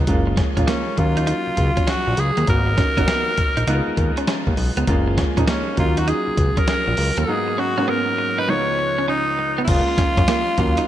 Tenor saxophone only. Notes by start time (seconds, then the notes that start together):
0.69 C#4
0.99 F4
1.89 F#4
2.19 G#4
2.49 A#4
5.49 C#4
5.79 F4
5.99 F#4
6.09 G#4
6.58 A#4
6.69 A#4
7.18 G#4
7.59 F#4
7.89 A#4
8.39 B4
8.49 C#5
9.09 D#4
9.64 E4
9.69 F4